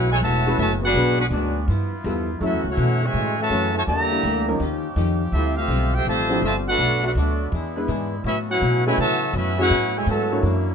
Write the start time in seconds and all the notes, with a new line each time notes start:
Already playing: B1 A2 C#3 F#3 A3 B3 C#4 F#4
0.12 G#3 E4 A4 C#5 G#5
0.21 E1 A2 E3 F#3 A3 B3 C#4 F#4 C#5 E5 A5
0.46 A3 C#4 E4 F#4 B4
0.58 F#1 A2 E3 F#3 A3 B3 C#4 F#4 C#5 E5 A5
0.82 B3 D4 F#4 G#4 B4 F#5
0.94 B1 G#2 D3 F#3 G#3 B3 D4 F#4 B4
1.19 B3 D4 F#4 G#4 B4 F#5
1.31 D2 G#2 F#3 B3 D4 F#4 G#4 D5
1.68 G2 F3 B3 E4 F4
2.04 E2 G2 F3 G3 B3 E4 F4 A4
2.40 F#2 E3 F#3 A3 C#4 E4 F#4 A4
2.45 C#4 F#4 E5
2.53 E2
2.64 C#2 A3 C#4 F#4
2.70 E4 A4 C#5 F#5
2.77 F#2 B2 E3 A3 C#4
3.03 C#3 E3 G#3 F#4 C#5 E5 G#5
3.14 F#2 A2 E3 A3 C#4
3.38 C#3 E3 A3 F#4 C#5 E5 A5
3.50 F#2 E3 F#3 A3 C#4 E4 A4
3.74 C#3 E3 A3 F#4 C#5 E5 A5
3.86 E2 D3 E3 G3 A#3 D4 G4 D5 E5 A#5
4.10 G3 A#3 D4 E4 A#4
4.23 D2 E3 A#3 D4 G4
4.48 F3 A#3 C#4 D#4 A#4
4.60 D#2 D#3 F3 C#4 D#4 F4 G4
4.96 F2 D#3 C#4 F4 G4
5.32 D2 D3 F3 G3 A3 C4 E4 F4 A4 E5
5.57 A3 C4 F4 A4 E5 F5
5.68 B1 D3 G3 C4 F4
5.94 A3 C4 F4 G4 C5 E5 G5
6.05 A1 C3 D3 F3 G3 A3 C4 F4 C5 E5 A5
6.30 F3 C4 D4 E4 G4
6.42 G1 C3 D3 F3 G3 A3 C4 F4 C5 E5 A5
6.67 A3 D4 F#4 A4 B4 F#5
6.78 B1 B2 D3 A3 B3 D4 F#4
7.03 A3 D4 F#4 A4 B4 F#5
7.15 D2 B2 F#3 A3 B3 D4 F#4 A4 D5
7.52 E2 E3 G#3 B3 D4 E4 G#4
7.76 G#3 B3 D4 E4 B4
7.88 G#2 E3 B3 D4 G#4
8.24 A2 C#3 F#3 B3 C#4 E4 F#4 A4 B4 E5
8.49 F#3 C#4 E4 F#4 B4 C#5 F#5
8.61 A2 B2 F#3 B3 C#4
8.86 G#3 A3 C#4 E4 F#4 A4 B4 C#5 G#5
8.98 A2 C#3 E3 F#3 A3 B3 C#4 F#4 C#5 E5 A5
9.33 F#2 A2 F#3 B3 C#4 E4 F#4 B4 E5
9.58 F#3 A3 C#4 E4 F#4 G#4 B4 C#5 F#5
9.70 A2 F#3 B3 C#4
9.96 G#3 E4 A4 C#5 G#5
10.07 G#2 A2 E3 F#3 B3 C#4 F#4 A4 C#5 E5 A5
10.31 A#3 D4 E4 F#4 C#5
10.43 F#2 D3 E3 F#3 A#3 D4 E4